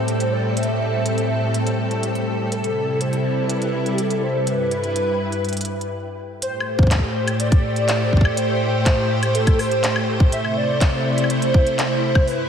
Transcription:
Already playing: string machine A2 G3 C4 A4, soft synth lead C5, synth texture G5
0.08 closed hi-hat
0.20 closed hi-hat
0.32 soft synth lead D5
0.57 soft synth lead E5, closed hi-hat
0.63 closed hi-hat
1.06 closed hi-hat
1.18 closed hi-hat
1.54 closed hi-hat
1.67 closed hi-hat
1.91 closed hi-hat
2.03 closed hi-hat
2.15 closed hi-hat
2.52 string machine C3 G3 E4, soft synth lead A4, closed hi-hat
2.64 closed hi-hat
3.01 soft synth lead C5, closed hi-hat
3.13 closed hi-hat
3.49 soft synth lead B4, closed hi-hat
3.62 closed hi-hat
3.86 soft synth lead A4, closed hi-hat
3.93 soft synth lead G4
3.98 soft synth lead A4, closed hi-hat
4.10 closed hi-hat
4.23 soft synth lead C5
4.47 string machine G2 E4 B4, soft synth lead B4, closed hi-hat
4.71 closed hi-hat
4.84 closed hi-hat
4.96 closed hi-hat
5.32 closed hi-hat
5.45 closed hi-hat
5.49 closed hi-hat
5.53 closed hi-hat
5.57 closed hi-hat
5.61 closed hi-hat
5.65 closed hi-hat
5.81 closed hi-hat
6.42 string machine A2 A3 G4 C5, soft synth lead C5, closed hi-hat
6.60 high woodblock
6.79 kick
6.83 kick
6.87 kick
6.91 kick, clap, closed hi-hat
6.95 kick
6.99 kick
7.15 soft synth lead C5
7.28 closed hi-hat, high woodblock
7.40 soft synth lead D5, closed hi-hat
7.52 kick, closed hi-hat
7.76 closed hi-hat
7.88 clap, closed hi-hat
8.13 kick
8.17 kick
8.21 kick
8.25 high woodblock
8.37 soft synth lead C5, closed hi-hat
8.86 kick, clap, closed hi-hat
9.23 closed hi-hat, high woodblock
9.35 soft synth lead A4, closed hi-hat
9.47 kick, closed hi-hat, high woodblock
9.59 soft synth lead C5, open hi-hat, high woodblock
9.71 closed hi-hat
9.84 clap, closed hi-hat
9.96 high woodblock
10.20 kick
10.32 string machine C3 A3 E4, soft synth lead E5, closed hi-hat
10.45 high woodblock
10.57 soft synth lead D5
10.81 kick, clap, closed hi-hat
11.18 closed hi-hat
11.24 high woodblock
11.30 soft synth lead C5, closed hi-hat
11.42 closed hi-hat
11.54 kick
11.67 closed hi-hat
11.79 clap, closed hi-hat
12.15 kick, high woodblock
12.27 string machine G2 G3 B4, soft synth lead B4, open hi-hat

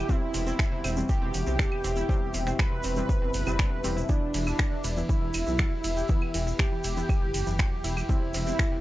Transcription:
Already playing: synth drone E2 B2, ambient pad E4 G4, analog synth lead G4, digital synth lead G5
0.09 synth pluck C3 C4, synth stab C3 G3 C4, analog synth lead E4, ambient pad E5 G5, digital synth lead E5, kick, shaker
0.34 detuned saw bass E1, synth pluck C3 C4, open hi-hat, shaker
0.47 synth pluck C4 C5, shaker
0.59 finger snap, kick, shaker
0.72 synth pluck C3 C4
0.84 detuned saw bass E1, synth pluck C4 C5, open hi-hat, claves, shaker
0.96 synth stab C3 G3 C4, shaker
1.09 synth pluck C3 C4, analog synth lead G4, digital synth lead G5, kick, shaker
1.22 detuned saw bass E1, synth pluck C3 C4
1.34 detuned saw bass E1, open hi-hat, shaker
1.47 detuned saw bass B1, synth pluck C3 C4, shaker
1.59 synth pluck D3 D4, finger snap, kick, shaker
1.72 claves
1.84 detuned saw bass E1, synth pluck C4 C5, open hi-hat, shaker
1.96 synth pluck E4 E5, shaker
2.09 synth pluck C3 C4, synth stab C3 G3 C4, ambient pad A5, kick, shaker
2.34 detuned saw bass E1, synth pluck C3 C4, open hi-hat, shaker
2.47 synth pluck C4 C5, finger snap, shaker
2.59 analog synth lead B4, digital synth lead B5, finger snap, kick, claves, shaker
2.72 synth pluck C3 C4
2.83 detuned saw bass E1, synth pluck C4 C5, open hi-hat, shaker
2.96 synth stab C3 G3 C4, shaker
3.09 synth pluck C3 C4, kick, shaker
3.22 detuned saw bass F#1, synth pluck C3 C4
3.34 detuned saw bass F#1, open hi-hat, shaker
3.47 detuned saw bass F#1, synth pluck C3 C4, synth stab C3 G3 C4, claves, shaker
3.59 synth pluck D3 D4, finger snap, kick, shaker
3.84 detuned saw bass E1, synth stab C3 G3 C4, synth pluck C4 C5, open hi-hat, shaker
3.97 synth pluck E4 E5, shaker
4.09 synth drone E2, synth stab E3 B3 E4, synth pluck E3 E4, analog synth lead D4, ambient pad G4 B4 G5, digital synth lead D5, kick, shaker
4.34 detuned saw bass E1, synth pluck E3 E4, open hi-hat, ride, shaker
4.47 synth pluck E4 E5, claves, shaker
4.59 finger snap, kick, shaker
4.72 synth pluck E3 E4
4.84 detuned saw bass E1, synth pluck E4 E5, open hi-hat, ride, shaker
4.97 synth stab E3 B3 E4, shaker
5.09 synth pluck E3 E4, analog synth lead E4, digital synth lead E5, kick, shaker
5.22 detuned saw bass E1, synth pluck E3 E4
5.34 detuned saw bass E1, open hi-hat, ride, claves, shaker
5.47 detuned saw bass B1, synth pluck E3 E4, shaker
5.58 synth pluck F#3 F#4, finger snap, kick, shaker
5.84 detuned saw bass E1, synth pluck E4 E5, open hi-hat, ride, shaker
5.97 synth pluck G4 G5, shaker
6.08 synth pluck E3 E4, synth stab E3 B3 E4, kick, shaker
6.22 claves
6.34 detuned saw bass E1, synth pluck E3 E4, open hi-hat, ride, shaker
6.47 synth pluck E4 E5, shaker
6.59 analog synth lead G4, digital synth lead G5, finger snap, kick, shaker
6.72 synth pluck E3 E4
6.84 detuned saw bass E1, synth pluck E4 E5, open hi-hat, ride, shaker
6.97 synth stab E3 B3 E4, shaker
7.09 synth pluck E3 E4, kick, claves, shaker
7.22 detuned saw bass F#1, synth pluck E3 E4
7.34 detuned saw bass F#1, open hi-hat, ride, shaker
7.47 detuned saw bass F#1, synth pluck E3 E4, shaker
7.59 synth pluck F#3 F#4, finger snap, kick, shaker
7.84 detuned saw bass E1, synth pluck E4 E5, open hi-hat, ride, shaker
7.97 synth pluck G4 G5, claves, shaker
8.09 synth stab C3 G3 C4, synth pluck C3 C4, ambient pad E4 C5, analog synth lead E4, digital synth lead E5, kick, shaker
8.34 detuned saw bass E1, synth pluck C3 C4, open hi-hat, ride, shaker
8.47 synth pluck C4 C5, shaker
8.59 finger snap, kick, shaker
8.72 synth pluck C3 C4

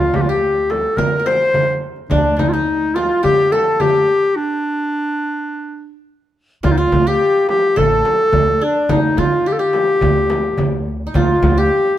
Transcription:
Already playing: upright bass D2, clarinet F4, qanun F4 A#4
0.14 clarinet G4, frame drum, darbuka dum
0.21 clarinet F4
0.29 qanun G4, clarinet G4
0.70 clarinet A4, darbuka tek, frame drum
0.97 upright bass D3, clarinet A#4, qanun A#4, darbuka dum, frame drum
1.19 qanun A#4
1.26 qanun C5, clarinet C5, darbuka tek, frame drum
1.54 darbuka dum, frame drum
1.96 darbuka ka
2.10 upright bass D2, clarinet D4, qanun D4, darbuka dum, frame drum
2.37 qanun D4 D#4, clarinet D#4, frame drum, darbuka dum
2.49 clarinet F4
2.53 clarinet D#4, qanun D#4
2.95 clarinet F4, qanun F4, darbuka tek, frame drum
3.23 upright bass D3, qanun G4, clarinet G4, frame drum, darbuka dum
3.52 clarinet A4, qanun A4, darbuka tek, frame drum
3.80 qanun G4, clarinet G4, darbuka dum, frame drum
4.36 clarinet D4
6.63 upright bass D2, qanun F4, clarinet F4, frame drum, darbuka dum
6.72 clarinet D#4
6.78 qanun F4, clarinet F4
6.92 upright bass D2, darbuka dum, frame drum
7.07 qanun G4, clarinet G4
7.49 clarinet G4, darbuka tek, frame drum
7.76 upright bass A1, qanun A4, clarinet A4, darbuka dum, frame drum
8.05 darbuka tek, frame drum
8.32 upright bass D2, darbuka dum, frame drum
8.61 qanun D4, clarinet D4
8.89 upright bass D2, qanun D#4, clarinet D#4, frame drum, darbuka dum
9.17 upright bass D3, qanun F4, clarinet F4, frame drum, darbuka dum
9.46 qanun G4, clarinet G4, darbuka ka
9.53 clarinet A4
9.59 qanun G4, clarinet G4
9.73 darbuka tek, frame drum
10.01 upright bass D2, darbuka dum, frame drum
10.30 darbuka tek, frame drum
10.57 upright bass D2, darbuka dum, frame drum
10.73 darbuka ka
10.87 darbuka ka
11.07 qanun D#4
11.14 upright bass D2, qanun F4, clarinet F4, darbuka dum, frame drum
11.42 upright bass D2, darbuka dum, frame drum
11.58 qanun G4, clarinet G4

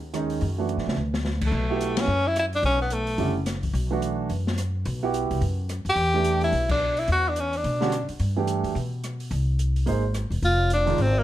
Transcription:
Already playing: upright bass D#2
0.13 grand piano D#3 G#3 C#4 D#4, cross-stick, closed hi-hat
0.30 open hi-hat
0.41 upright bass F#2, open hi-hat
0.58 grand piano E3 A3 D4 F#4
0.69 closed hi-hat
0.77 upright bass A#2, snare
0.87 upright bass C#3, snare
0.97 upright bass D2
1.14 snare
1.25 snare
1.41 kick, crash
1.47 tenor saxophone A3
1.52 upright bass B1
1.70 grand piano B3 E4 F#4 G4
1.81 closed hi-hat
1.97 tenor saxophone C#4, snare, ride
2.07 upright bass F#2
2.27 tenor saxophone E4
2.36 tenor saxophone E4, cross-stick, closed hi-hat
2.53 tenor saxophone D4, open hi-hat
2.63 upright bass B1, tenor saxophone C#4, open hi-hat
2.82 tenor saxophone B3
2.90 tenor saxophone A3, closed hi-hat
3.07 open hi-hat
3.18 upright bass F#1, grand piano D3 G3 C#4 E4, open hi-hat
3.46 cross-stick, snare, closed hi-hat
3.63 kick, open hi-hat
3.73 upright bass B1, open hi-hat
3.91 grand piano E3 A3 D4 F#4
4.02 closed hi-hat
4.29 upright bass F#2, open hi-hat
4.47 snare
4.58 cross-stick, closed hi-hat
4.85 upright bass B1, open hi-hat
5.03 grand piano B3 E4 F#4 G4
5.14 closed hi-hat
5.31 upright bass C2, open hi-hat
5.41 upright bass F#2, open hi-hat
5.69 cross-stick, closed hi-hat
5.85 upright bass F#2, open hi-hat
5.89 tenor saxophone G4
5.96 upright bass E2, open hi-hat
6.14 grand piano E3 A3 D4 G4
6.24 closed hi-hat
6.41 tenor saxophone E4, open hi-hat
6.53 upright bass B1, open hi-hat
6.69 tenor saxophone D4, kick, crash
6.97 tenor saxophone E4, open hi-hat
7.08 upright bass E2, open hi-hat
7.12 tenor saxophone F#4
7.29 tenor saxophone D4
7.36 tenor saxophone C#4, closed hi-hat
7.53 tenor saxophone D4, open hi-hat
7.64 upright bass B2, open hi-hat
7.81 grand piano D3 G3 C#4 F#4, snare
7.92 cross-stick, closed hi-hat
8.09 muted upright bass stroke, open hi-hat
8.19 upright bass G2, open hi-hat
8.37 grand piano E3 A3 D4 G4
8.47 closed hi-hat
8.64 upright bass F#2, open hi-hat
8.75 upright bass B2, open hi-hat
9.04 cross-stick, closed hi-hat
9.20 open hi-hat
9.31 upright bass C2, open hi-hat
9.59 closed hi-hat
9.76 open hi-hat
9.86 upright bass G#1, grand piano A#3 D#4 G#4 C5, open hi-hat
10.14 cross-stick, closed hi-hat
10.30 upright bass E1, open hi-hat
10.42 upright bass F1, tenor saxophone F4, open hi-hat
10.70 tenor saxophone D4, closed hi-hat
10.86 grand piano D#3 G#3 D4 F4, open hi-hat
10.98 upright bass G#1, tenor saxophone C4, open hi-hat
11.19 tenor saxophone A#3

